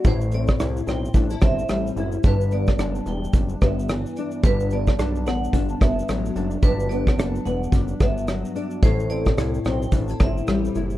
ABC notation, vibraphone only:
X:1
M:4/4
L:1/16
Q:"Swing 16ths" 1/4=109
K:G
V:1 name="Vibraphone"
c2 d2 z2 g2 z2 e3 z3 | B2 d2 z2 g2 z2 e2 z2 d z | B2 d2 z2 f2 z2 e3 z3 | B2 d2 z2 f2 z2 e2 z2 d z |
c2 d2 z2 g2 z2 e3 z3 |]